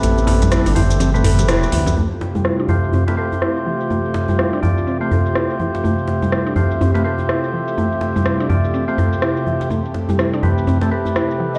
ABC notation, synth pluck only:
X:1
M:4/4
L:1/16
Q:"Swing 16ths" 1/4=124
K:Gmix
V:1 name="Synth pluck"
A, z2 G, E D E, z C A, A z E z E, z | A, z2 G, E D E, z C A, A z E z E, z | A, z2 G, E D E, z C A, A z E z E, z | A, z2 G, E D E, z C A, A z E z E, z |
A, z2 G, E D E, z C A, A z E z E, z | A, z2 G, E D E, z C A, A z E z E, z |]